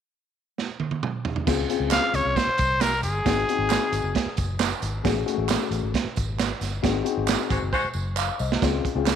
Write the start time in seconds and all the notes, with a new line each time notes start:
0.58 snare
0.80 high tom
0.91 high tom
1.03 mid tom
1.25 floor tom
1.36 floor tom
1.46 C#2 C4 C#4 F4 G#4, kick, snare, crash, tambourine
1.69 C4 C#4 F4 G#4, closed hi-hat, tambourine
1.80 C#2
1.91 F5, snare, clap, closed hi-hat, tambourine
2.14 C#2 C#5, closed hi-hat, tambourine
2.25 C2
2.36 C5, kick, snare, closed hi-hat, tambourine
2.47 muted fingered electric bass stroke
2.58 C2, kick, closed hi-hat, tambourine
2.81 A#4, snare, clap, closed hi-hat, tambourine
3.03 G1 G#4, closed hi-hat, tambourine
3.25 G#1 C4 D#4 F#4 G#4, kick, snare, closed hi-hat, tambourine
3.49 C4 D#4 F#4 G#4, closed hi-hat
3.58 G#1
3.70 snare, clap, closed hi-hat, tambourine
3.92 G#1, closed hi-hat, tambourine
4.04 F#1
4.15 kick, snare, closed hi-hat
4.26 muted fingered electric bass stroke
4.37 F#1, kick, closed hi-hat, tambourine
4.60 snare, clap, closed hi-hat, tambourine
4.82 G#1, closed hi-hat, tambourine
5.03 A1 A3 C#4 F#4 G#4, kick, snare, closed hi-hat, tambourine
5.25 G#3 C#4 F#4 G#4, closed hi-hat
5.30 A3
5.38 A1
5.49 snare, clap, closed hi-hat, tambourine
5.71 A1, closed hi-hat, tambourine
5.83 G#1
5.94 kick, snare, closed hi-hat
6.05 muted fingered electric bass stroke
6.16 G#1, kick, closed hi-hat, tambourine
6.39 snare, clap, closed hi-hat, tambourine
6.61 G1, snare, closed hi-hat, tambourine
6.82 G#1 C4 D#4 F#4 G#4, kick, snare, closed hi-hat, tambourine
7.04 C4 D#4 F#4 G#4, closed hi-hat
7.17 G#1
7.28 snare, clap, closed hi-hat, tambourine
7.50 G#1 G#3 F#4 C5, kick, closed hi-hat, tambourine
7.62 F#1
7.73 G#3 F#4 C5, kick, tambourine
7.84 muted fingered electric bass stroke
7.94 F#1, tambourine
8.16 F5, clap, tambourine
8.39 C2 C5 D#5, tambourine
8.52 snare
8.62 C#2 C4 C#4 F4 G#4, kick, snare, closed hi-hat, tambourine
8.85 kick, closed hi-hat
8.95 C#2 C4 C#4 F4 G#4
9.06 snare, clap, closed hi-hat, tambourine